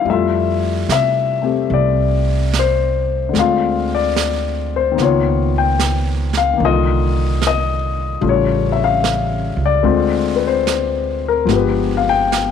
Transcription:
0.01 grand piano G3 E4
0.05 upright bass F2, grand piano A3, brush sweep
0.10 grand piano F4 E5
0.88 upright bass C3, grand piano E5, snare, hi-hat pedal
1.41 grand piano A3 C4 G4
1.70 upright bass C2, grand piano D5, brush sweep
2.53 snare, hi-hat pedal
2.59 grand piano C5
3.29 grand piano D3
3.33 upright bass D2, grand piano G#3 C4, brush sweep, snare
3.39 grand piano F4 F5
3.95 grand piano D5
4.16 snare, hi-hat pedal
4.76 grand piano C5
4.92 grand piano D#3 A#3
4.98 upright bass C#2, grand piano B3 F4, brush sweep, snare
5.03 grand piano C#5
5.58 grand piano G5
5.79 snare, hi-hat pedal
6.33 snare
6.37 grand piano F5
6.53 grand piano D#3 A#3
6.60 upright bass C2, grand piano D3, brush sweep
6.65 grand piano F4 D#5
7.42 snare, hi-hat pedal
7.47 grand piano D#5
8.21 upright bass A1, grand piano C#3 G3 A3 F4, brush sweep
8.29 grand piano C#5
8.72 grand piano E5
8.84 grand piano F5
9.04 snare, hi-hat pedal
9.57 upright bass C#2
9.66 grand piano D5
9.83 upright bass D2, grand piano D3 G#3 C4 F4, brush sweep
10.36 grand piano B4
10.47 grand piano C5
10.67 snare, hi-hat pedal
11.28 grand piano A#4
11.45 upright bass G1, grand piano F3 G#3 B3, brush sweep, snare
11.50 grand piano G4
11.56 grand piano B4
11.97 grand piano F5
12.09 grand piano G5
12.32 snare, hi-hat pedal

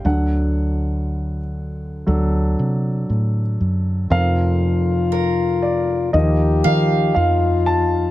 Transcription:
0.05 fretless electric bass D2, grand piano D2 D3 F#3 D4 A4 F#5
2.07 fretless electric bass D2, grand piano F#3 D4 A4
2.59 fretless electric bass C3
3.10 fretless electric bass A2
3.61 fretless electric bass F#2
4.10 grand piano F1 F2 F3 C4 A#4 F5, fretless electric bass F2, french horn F4
5.12 steel-string acoustic guitar A#4
5.62 grand piano D5
6.13 fretless electric bass D#2, grand piano D#2 F3 D#4 A#4 D#5, french horn G4
6.64 fretless electric bass D#3, grand piano F3 D#4 A#4, steel-string acoustic guitar F5
7.15 fretless electric bass F2, french horn F4, grand piano F5
7.66 grand piano A5

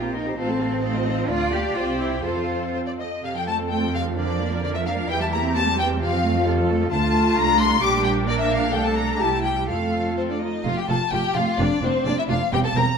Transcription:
Already playing: double bass section A#1, cello section F4, violin section A#4
0.02 viola section C4 G4, violin section C5 A#5
0.14 viola section A#3 D#4, cello section D#4, violin section A#4 G5
0.25 viola section C4 G4, violin section C5 A#5
0.37 double bass section A1, viola section A3 F4, cello section C4, violin section A4 C5 F5
0.49 viola section C4 A4, violin section C5 A5
0.59 viola section A3 F4, violin section A4 F5
0.70 viola section C4 A4, violin section C5 A5
0.82 viola section A3 D#4, violin section A4 D#5 F5
0.94 viola section C4 F4, violin section C5 D#5
1.05 viola section A3 D#4, violin section A4 F5
1.16 viola section C4 F4, violin section C5 D#5
1.28 double bass section D2, viola section A3 D4, cello section F4, violin section D5 F5
1.51 viola section A#3, cello section G4
1.75 double bass section C2, viola section C4 G4, cello section F4, violin section C5 G5
2.00 cello section E4
2.23 double bass section F2, viola section C4 A4, cello section F4, violin section C5 F5
2.73 violin section C5
2.86 violin section D5
2.98 violin section D#5
3.23 double bass section F2, viola section C3 A4, violin section F5
3.34 viola section F3, violin section G5
3.46 viola section A3, violin section A5
3.59 viola section C4
3.71 viola section A3, cello section C4, violin section G5
3.83 viola section F3
3.94 viola section C3, violin section F5
4.06 viola section F3
4.17 viola section D3 A#4, cello section D4, violin section D5
4.28 viola section F3
4.40 viola section A#3
4.51 viola section F3
4.62 viola section D3, violin section D5
4.74 viola section F3, violin section E5
4.85 viola section A#3, violin section F5
4.97 viola section F3
5.09 double bass section E2, viola section E3 G4, cello section E4, violin section G5
5.20 viola section G3, violin section A5
5.32 viola section A#3, violin section A#5
5.43 viola section C4
5.54 viola section A#3, cello section C4, violin section A5
5.65 viola section G3
5.78 viola section E3, violin section G5
5.89 viola section G3
5.99 double bass section F2, viola section C3 F4, violin section F5
6.11 viola section F3
6.24 viola section A3
6.35 viola section F3
6.46 viola section C3, cello section A4
6.58 viola section F3
6.69 viola section A3
6.81 viola section F3
6.92 double bass section D2, viola section A3 F4, cello section F4, violin section A5
7.37 double bass section C2, viola section D4, violin section A#5
7.60 violin section C6
7.81 double bass section A#1, viola section G3 D4, cello section G4, violin section D6
8.04 violin section G5
8.27 viola section A#3, cello section A#4, violin section D5
8.39 violin section E5
8.50 violin section F5
8.72 double bass section C2, viola section A3, cello section A4, violin section G5
8.84 violin section A5
8.95 violin section A#5
9.20 double bass section C2, viola section G3 E4, cello section G4, violin section A5
9.43 violin section G5
9.68 double bass section F2, viola section A3 F4, cello section A4, violin section F5
10.17 violin section C4 C5
10.30 violin section D4 D5
10.40 violin section D#4 D#5
10.65 double bass section F1, cello section F2, viola section A3 F4, violin section F4 F5
10.77 violin section G4 G5
10.88 double bass section F1, cello section F2, viola section A3 F4, violin section A4 A5
11.11 double bass section F1, cello section F2, viola section A3 F4, violin section G4 G5
11.35 double bass section F1, cello section F2, viola section A3 F4, violin section F4 F5
11.58 double bass section F1, cello section F2, viola section A#3 D4, violin section D4 D5
11.82 double bass section F1, cello section F2, viola section A#3 D4, violin section C4 C5
12.05 double bass section F1, cello section F2, viola section A#3 D4, violin section D4 D5
12.18 violin section E4 E5
12.28 double bass section F1, cello section F2, viola section A#3 D4, violin section F4 F5
12.52 double bass section E1, cello section E2, viola section G3 C4, violin section G4 G5
12.64 violin section A4 A5
12.75 double bass section E1, cello section E2, viola section G3 C4, violin section A#4 A#5

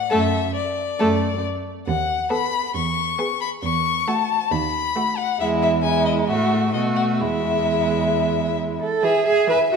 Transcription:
Already playing: violin F#5
0.10 cello F#2, viola A3, violin A4 E5
0.56 violin D5
0.99 cello F#2, viola A3, violin A4
1.87 cello D#2, violin F#5
2.30 viola B3, violin A4 B5
2.75 cello E2, violin C#6
3.19 viola B3, violin G#4
3.41 violin B5
3.63 cello E2, violin C#6
4.08 viola A3, violin F#4 A5
4.51 cello D#2, violin B5
4.96 viola A3, violin F#4
5.18 violin F#5
5.40 cello E2, viola G#3, violin E4 E5
5.62 violin E5
5.83 viola G#3, violin E4 G#5
6.05 violin D#5
6.27 cello A2, viola A3, violin F#4 E5
6.73 cello B2, viola A3, violin F#4 D#5
6.96 violin F#5
7.19 cello E2, viola G#3, violin E4 E5
8.82 cello A4
9.03 viola E3, cello G#4, violin E5 G#5
9.26 cello G#4, violin E5 G#5
9.47 viola E3, cello B4, violin E5 G#5
9.70 cello F#4, violin E5 G#5

